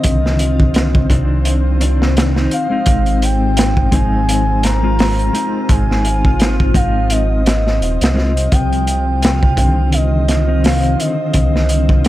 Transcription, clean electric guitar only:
0.00 1.07 D3 medium
0.00 1.06 D#3 medium
0.00 1.06 C4 medium
1.10 1.77 D#3 loud
1.10 1.77 C4 medium
1.10 1.78 D4 loud
1.80 2.31 D#3 medium
1.80 2.31 C4 medium
1.80 2.32 D4 loud
2.35 2.66 D#3 loud
2.35 2.66 C4 medium
2.35 2.66 D#4 loud
2.70 3.88 G#3 medium
2.70 3.89 C4 medium
2.70 3.89 D#4 loud
3.91 4.78 G#3 medium
3.91 4.78 C4 medium
3.91 4.79 D#4 medium
4.83 5.30 G#3 medium
4.83 5.30 C4 medium
4.83 5.31 F4 medium
5.33 6.71 G#3 medium
5.33 6.71 C4 medium
5.33 6.72 D#4 loud
6.74 7.41 G#3 medium
6.74 7.42 C4 medium
6.74 7.42 D#4 loud
8.15 8.32 G#3 medium
8.15 8.32 C4 medium
8.15 8.32 F4 loud
9.56 10.44 D3 medium
9.56 10.43 D#3 medium
9.56 10.43 C4 medium
10.47 10.95 D#3 medium
10.47 10.95 C4 medium
10.47 10.95 D#4 medium
10.97 12.08 D3 loud
10.97 12.08 D#3 medium
10.97 12.08 C4 medium

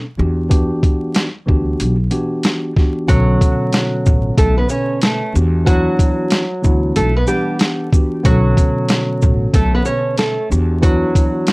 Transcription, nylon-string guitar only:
3.08 4.34 F#3 medium
3.08 4.34 F#4 loud
4.38 4.57 A3 medium
4.38 4.56 A4 medium
4.58 4.69 B3 medium
4.58 4.69 B4 medium
4.70 4.99 C#4 medium
4.70 4.99 C#5 medium
5.04 5.33 A3 medium
5.04 5.32 A4 medium
5.66 6.92 F#3 medium
5.66 6.92 F#4 loud
6.96 7.15 A3 medium
6.96 7.14 A4 medium
7.16 7.27 B3 medium
7.16 7.27 B4 medium
7.28 7.57 G3 medium
7.28 7.57 G4 medium
8.25 9.50 F#3 medium
8.25 9.50 F#4 loud
9.54 9.73 A3 medium
9.54 9.72 A4 medium
9.75 9.86 B3 medium
9.75 9.85 B4 medium
9.85 10.15 C#4 medium
9.85 10.15 C#5 medium
10.18 10.48 A3 medium
10.18 10.48 A4 medium
10.82 11.53 F#3 medium
10.82 11.53 F#4 loud

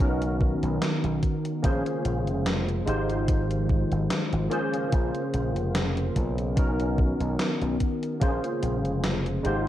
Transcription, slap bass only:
0.00 0.55 B1 medium
0.63 0.77 B1 medium
1.04 1.19 B1 medium
1.64 1.81 A#1 loud
2.05 2.27 A#1 medium
2.27 2.80 F1 medium
2.87 3.84 G#1 medium
3.92 4.06 G#1 medium
4.33 4.47 G#1 medium
4.93 5.10 A#1 loud
5.34 5.56 A#1 medium
5.56 6.09 F1 medium
6.16 7.12 B1 medium
7.20 7.35 B1 medium
7.61 7.76 B1 medium
8.21 8.39 A#1 loud
8.63 8.85 A#1 medium
8.85 9.38 F1 medium
9.45 9.68 G#1 medium

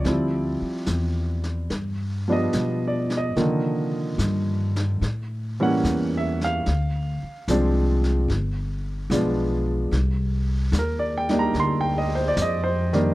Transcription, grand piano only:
0.00 0.58 D5 medium
0.05 0.56 F3 soft
0.05 0.56 G3 soft
0.05 0.56 C4 soft
0.05 0.56 E4 medium
2.28 2.51 F3 medium
2.28 2.51 G3 soft
2.28 2.52 B3 medium
2.28 2.52 D4 medium
2.32 2.81 D#5 medium
2.87 3.11 D5 medium
3.17 3.92 D#5 medium
3.37 3.88 D3 medium
3.37 3.88 D#3 medium
3.37 3.88 F3 soft
3.37 3.88 A#3 soft
5.60 5.82 E3 medium
5.60 5.82 G3 medium
5.60 5.83 A#3 medium
5.60 5.83 C#4 medium
5.60 6.11 F#5 medium
6.17 6.41 E5 medium
6.44 7.19 F5 medium
7.49 8.30 F3 medium
7.49 8.30 G#3 medium
7.49 8.30 C4 soft
7.49 8.30 D4 medium
9.11 9.61 F3 medium
9.11 9.61 G#3 medium
9.11 9.61 B3 medium
9.11 9.62 D4 medium
10.79 11.03 A#4 medium
10.99 11.27 D5 medium
11.18 11.35 G5 medium
11.29 12.32 G3 medium
11.29 12.32 A#3 medium
11.29 12.32 D4 medium
11.29 12.31 D#4 medium
11.39 11.53 A#5 medium
11.60 11.84 C6 medium
11.81 12.09 G5 medium
11.98 12.03 D#5 medium
12.15 12.30 C5 medium
12.28 12.36 D5 medium
12.42 12.66 D#5 medium
12.64 12.81 C5 medium
12.93 13.14 D#3 medium
12.93 13.14 G3 medium
12.93 13.14 A#3 medium
12.93 13.14 D4 medium

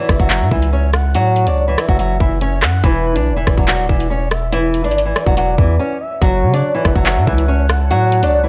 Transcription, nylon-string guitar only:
0.00 0.16 E3 medium
0.00 0.15 E4 medium
0.20 0.29 F#3 medium
0.20 0.28 F#4 medium
0.30 0.48 F#3 medium
0.30 0.47 F#4 medium
0.51 0.69 E3 medium
0.51 0.68 E4 medium
0.73 0.89 C#4 medium
0.73 0.90 C#5 medium
1.15 1.45 F#3 medium
1.15 1.45 F#4 loud
1.47 1.63 D4 medium
1.47 1.64 D5 medium
1.68 1.85 E3 medium
1.68 1.85 E4 medium
1.89 1.98 F#3 medium
1.89 1.97 F#4 medium
1.99 2.17 F#3 medium
1.99 2.16 F#4 medium
2.20 2.38 E3 medium
2.20 2.37 E4 medium
2.41 2.58 C#4 medium
2.41 2.59 C#5 medium
2.84 3.14 E3 medium
2.84 3.13 E4 loud
3.15 3.32 D4 medium
3.15 3.33 D5 medium
3.36 3.54 E3 medium
3.36 3.53 E4 medium
3.58 3.66 F#3 medium
3.58 3.66 F#4 medium
3.68 3.85 F#3 medium
3.68 3.85 F#4 medium
3.89 4.07 E3 medium
3.89 4.06 E4 medium
4.10 4.27 C#4 medium
4.10 4.28 C#5 medium
4.52 4.83 E3 medium
4.52 4.82 E4 loud
4.84 5.01 D4 medium
4.84 5.02 D5 medium
5.05 5.23 E3 medium
5.05 5.22 E4 medium
5.26 5.35 F#3 medium
5.26 5.35 F#4 medium
5.37 5.54 F#3 medium
5.37 5.54 F#4 medium
5.58 5.76 E3 medium
5.58 5.75 E4 medium
5.79 5.96 C#4 medium
5.79 5.97 C#5 medium
6.22 6.52 F#3 medium
6.22 6.51 F#4 loud
6.53 6.70 D4 medium
6.53 6.71 D5 medium
6.74 6.92 E3 medium
6.74 6.91 E4 medium
6.96 7.05 F#3 medium
6.96 7.04 F#4 medium
7.06 7.24 F#3 medium
7.06 7.23 F#4 medium
7.27 7.45 E3 medium
7.27 7.44 E4 medium
7.48 7.65 C#4 medium
7.48 7.66 C#5 medium
7.91 8.21 F#3 medium
7.91 8.20 F#4 loud
8.22 8.39 D4 medium
8.22 8.40 D5 medium
8.43 8.49 E3 medium
8.43 8.49 E4 medium

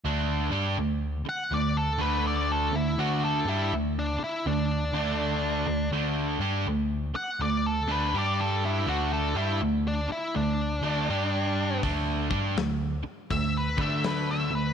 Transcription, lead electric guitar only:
1.29 1.52 F#5 medium
1.54 1.77 D5 medium
1.77 2.01 A4 medium
2.01 2.25 B4 medium
2.27 2.50 D5 medium
2.52 2.75 A4 medium
2.75 2.99 E4 medium
3.00 3.23 F#4 medium
3.25 3.48 A4 medium
3.49 3.72 E4 medium
3.99 4.22 D4 medium
4.24 4.47 E4 medium
4.47 5.90 D4 medium
7.16 7.40 F#5 medium
7.42 7.65 D5 medium
7.66 7.90 A4 medium
7.91 8.14 B4 medium
8.18 8.40 D5 medium
8.40 8.63 A4 medium
8.65 8.88 E4 medium
8.89 9.12 F#4 medium
9.13 9.37 A4 medium
9.36 9.60 E4 medium
9.88 10.11 D4 medium
10.12 10.35 E4 medium
10.36 11.79 D4 loud
13.31 13.55 E5 loud
13.57 13.80 B4 medium
13.81 14.04 E5 loud
14.05 14.29 B4 medium
14.31 14.54 E5 loud
14.55 14.73 B4 medium

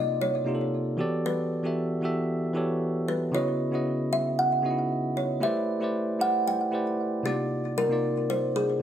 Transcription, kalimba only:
0.00 0.22 D#5 loud
0.21 1.28 C#5 loud
1.26 3.07 B4 loud
3.08 3.35 B4 medium
3.35 4.15 C#5 medium
4.13 4.39 E5 loud
4.39 4.87 F#5 medium
5.17 5.43 C#5 medium
5.43 6.23 E5 medium
6.21 6.48 F#5 loud
6.48 6.96 G5 loud
7.26 7.79 G4 loud
7.78 8.31 A#4 loud
8.30 8.42 C5 loud
8.56 8.82 G#4 loud

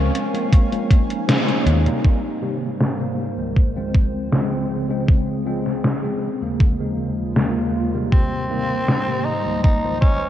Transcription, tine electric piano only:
0.00 0.20 F3 medium
0.00 0.20 G#3 medium
0.00 0.20 C4 medium
0.00 0.20 C#4 loud
0.33 0.67 F3 medium
0.33 0.67 G#3 medium
0.33 0.68 A#3 medium
0.33 0.68 C4 medium
0.71 1.24 F3 medium
0.71 1.24 G#3 medium
0.71 1.24 A#3 medium
0.71 1.24 C#4 medium
1.27 1.81 F3 medium
1.27 1.81 G#3 medium
1.27 1.81 A#3 medium
1.27 1.81 C#4 loud
1.85 2.37 G3 medium
1.85 2.38 A#3 medium
1.85 2.38 C4 medium
1.85 2.38 D#4 medium
2.41 2.67 C3 medium
2.41 2.67 D#3 medium
2.41 2.67 G3 medium
2.41 2.67 A#3 medium
2.99 3.23 C3 medium
2.99 3.24 D#3 medium
2.99 3.24 G3 medium
2.99 3.24 A#3 medium
3.37 3.71 C#2 medium
3.37 3.71 D#3 medium
3.37 3.71 F3 medium
3.37 3.71 G#3 medium
3.37 3.72 A#3 medium
3.75 4.27 C#2 medium
3.75 4.28 D#3 medium
3.75 4.28 F3 medium
3.75 4.28 G#3 medium
3.75 4.28 C4 medium
4.32 4.85 C#3 medium
4.32 4.85 F3 medium
4.32 4.85 G#3 medium
4.32 4.86 C4 medium
4.89 5.41 C#3 medium
4.89 5.42 F3 medium
4.89 5.42 G#3 medium
4.89 5.42 C4 medium
5.45 5.71 C#3 medium
5.45 5.71 F3 medium
5.45 5.71 G#3 medium
5.45 5.71 C4 medium
6.03 6.27 C#3 medium
6.03 6.28 F3 medium
6.03 6.28 G#3 medium
6.03 6.28 C4 medium
6.41 6.75 D#2 medium
6.41 6.75 C#3 medium
6.41 6.75 F3 medium
6.41 6.75 G#3 medium
6.41 6.75 A#3 medium
6.79 7.31 D#2 medium
6.79 7.31 C#3 medium
6.79 7.32 F3 medium
6.79 7.32 G#3 medium
6.79 7.32 A#3 medium
7.35 7.89 D#2 medium
7.35 7.89 C#3 medium
7.35 7.89 F3 medium
7.35 7.89 G#3 medium
7.35 7.89 A#3 medium
7.93 8.45 C3 medium
7.93 8.45 D#3 medium
7.93 8.46 G3 medium
7.93 8.46 A#3 medium
8.49 8.75 C3 medium
8.49 8.75 D#3 medium
8.49 8.75 G3 medium
8.49 8.75 A#3 medium
9.07 9.31 C3 medium
9.07 9.32 D#3 medium
9.07 9.32 G3 medium
9.07 9.32 A#3 medium
9.45 9.79 C#2 medium
9.45 9.79 D#3 medium
9.45 9.79 F3 medium
9.45 9.79 G#3 medium
9.45 9.79 A#3 medium
9.83 10.29 C#2 medium
9.83 10.29 D#3 medium
9.83 10.29 F3 medium
9.83 10.29 G#3 medium
9.83 10.29 C5 medium

